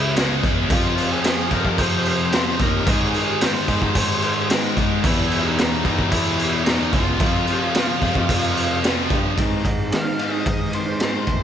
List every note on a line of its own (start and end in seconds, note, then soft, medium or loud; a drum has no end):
0.00 0.40 C#2 medium
0.00 0.15 C#3 medium
0.00 0.69 C#3 medium
0.00 0.18 G#3 medium
0.00 0.71 G#3 medium
0.00 0.15 C#4 medium
0.00 0.70 C#4 loud
0.00 0.14 E4 medium
0.00 0.15 E5 medium
0.16 0.69 C#3 medium
0.16 0.73 G#3 medium
0.16 0.71 C#4 medium
0.16 snare loud
0.16 crash medium
0.43 0.69 E2 loud
0.43 kick medium
0.43 crash medium
0.69 1.50 F2 medium
0.69 1.48 F2 loud
0.69 1.50 C3 loud
0.69 1.50 F3 loud
0.69 1.09 F4 medium
0.69 1.13 F5 medium
0.69 kick loud
0.69 crash medium
0.98 crash medium
1.12 1.50 G#4 medium
1.12 1.54 G#5 medium
1.24 snare loud
1.24 crash medium
1.51 1.64 F2 medium
1.51 2.31 F2 medium
1.51 2.32 C3 medium
1.51 2.31 F3 medium
1.51 1.78 A#4 medium
1.51 1.81 A#5 medium
1.51 kick medium
1.51 crash medium
1.65 1.78 F2 medium
1.65 kick medium
1.78 2.56 F2 medium
1.78 2.05 C5 medium
1.78 2.08 C6 loud
1.78 kick loud
1.78 crash medium
2.05 2.58 C5 medium
2.05 2.62 C6 loud
2.05 crash medium
2.32 2.85 F2 medium
2.32 2.86 C3 medium
2.32 2.87 F3 medium
2.32 snare loud
2.32 crash medium
2.59 2.85 D#2 medium
2.59 2.87 A#4 medium
2.59 2.89 A#5 medium
2.59 kick medium
2.59 crash medium
2.86 3.12 G#2 loud
2.86 3.67 G#2 medium
2.86 3.68 D#3 loud
2.86 3.14 G#4 medium
2.86 3.16 G#5 loud
2.86 kick loud
2.86 crash medium
2.91 3.68 G#3 loud
3.14 3.41 G#4 medium
3.14 3.44 G#5 medium
3.14 crash medium
3.41 4.47 C5 medium
3.41 4.47 C6 medium
3.41 snare loud
3.41 crash medium
3.68 3.81 G#2 loud
3.68 4.48 G#2 medium
3.68 4.49 D#3 medium
3.68 4.53 G#3 medium
3.68 kick medium
3.68 crash medium
3.82 3.95 G#2 loud
3.82 kick medium
3.95 4.72 G#2 loud
3.95 kick loud
3.95 crash loud
4.22 crash medium
4.50 5.02 G#2 medium
4.50 5.03 D#3 medium
4.50 5.07 G#3 medium
4.50 snare loud
4.50 crash loud
4.77 5.02 G#2 loud
4.77 kick medium
4.77 crash medium
5.04 5.83 E2 medium
5.04 5.81 E2 loud
5.04 5.84 B2 loud
5.04 5.84 E3 loud
5.04 5.43 E4 medium
5.04 5.46 E5 loud
5.04 kick loud
5.04 crash medium
5.31 crash medium
5.46 5.83 D#4 medium
5.46 5.83 D#5 loud
5.58 snare loud
5.58 crash medium
5.85 5.97 E2 medium
5.85 6.65 E2 medium
5.85 6.65 B2 medium
5.85 6.64 E3 medium
5.85 6.10 D#4 medium
5.85 6.10 D#5 medium
5.85 kick medium
5.85 crash medium
5.99 6.11 E2 medium
5.99 kick medium
6.10 6.89 E2 loud
6.10 6.62 E4 medium
6.10 6.64 E5 loud
6.10 kick loud
6.10 crash medium
6.39 crash medium
6.64 7.19 E2 medium
6.64 7.20 B2 medium
6.64 6.91 D#4 medium
6.64 6.93 D#5 loud
6.64 snare loud
6.64 crash medium
6.70 7.20 E3 medium
6.93 7.18 C#2 loud
6.93 8.79 F4 medium
6.93 8.79 F5 medium
6.93 kick medium
6.93 crash medium
7.20 7.46 F2 loud
7.20 8.00 F2 loud
7.20 8.01 C3 loud
7.20 kick loud
7.20 crash medium
7.25 8.01 F3 loud
7.47 crash medium
7.74 snare loud
7.74 crash medium
8.02 8.14 F2 medium
8.02 8.83 C3 medium
8.02 8.82 F3 medium
8.02 kick medium
8.02 crash medium
8.06 8.82 F2 medium
8.15 8.28 F2 medium
8.15 kick medium
8.29 9.06 F2 medium
8.29 kick loud
8.29 crash medium
8.57 crash medium
8.84 9.36 F2 medium
8.84 9.37 C3 medium
8.84 9.38 F3 medium
8.84 snare loud
8.84 crash medium
9.10 9.36 G2 loud
9.10 kick medium
9.10 crash medium
9.36 9.89 G#2 medium
9.36 9.63 G#2 medium
9.36 9.63 D#3 medium
9.36 9.64 D#3 medium
9.36 9.65 G#3 medium
9.36 9.64 G#3 medium
9.36 9.65 C4 medium
9.36 9.66 D#4 loud
9.36 kick medium
9.36 ride medium
9.64 10.42 G#2 medium
9.64 9.89 G#2 medium
9.64 9.90 D#3 medium
9.64 9.92 G#3 medium
9.64 9.92 C4 medium
9.64 9.92 D#4 medium
9.64 kick medium
9.64 ride medium
9.90 10.32 G#2 medium
9.90 10.17 G#2 medium
9.90 10.18 D#3 medium
9.90 10.17 D#3 medium
9.90 10.08 G#3 medium
9.90 10.05 C4 medium
9.90 10.04 D#4 loud
9.90 10.35 F5 medium
9.90 snare loud
9.90 ride medium
10.05 10.19 G#3 medium
10.05 10.18 C4 medium
10.05 10.19 D#4 medium
10.19 10.45 G#2 medium
10.19 10.45 D#3 medium
10.19 10.45 G#3 loud
10.19 muted steel-string acoustic guitar stroke soft
10.19 ride medium
10.33 10.73 G#3 medium
10.33 10.74 C4 medium
10.33 10.75 D#4 medium
10.33 10.45 D#5 medium
10.46 11.24 G#2 medium
10.46 10.71 G#2 medium
10.46 10.72 D#3 medium
10.46 10.74 D#5 medium
10.46 kick loud
10.46 ride medium
10.73 10.99 G#2 medium
10.73 10.99 D#3 medium
10.73 10.88 G#3 medium
10.73 10.86 C4 medium
10.73 10.84 D#4 medium
10.73 11.00 C5 medium
10.73 ride medium
10.86 10.99 G#3 medium
10.86 11.00 C4 medium
10.86 11.01 D#4 medium
10.98 11.40 G#2 medium
10.98 11.26 D#3 medium
10.98 11.15 G#3 medium
10.98 11.13 C4 medium
10.98 11.11 D#4 medium
10.98 11.43 C5 medium
10.98 snare loud
10.98 ride medium
11.03 11.27 G#2 medium
11.03 11.27 D#3 medium
11.03 11.28 G#3 medium
11.13 11.27 G#3 soft
11.13 11.28 C4 medium
11.13 11.29 D#4 medium
11.27 11.43 D2 medium
11.27 11.43 G#2 medium
11.27 11.43 D#3 medium
11.27 11.43 G#3 medium
11.27 11.41 C4 medium
11.27 11.40 D#4 medium
11.27 kick medium
11.27 ride medium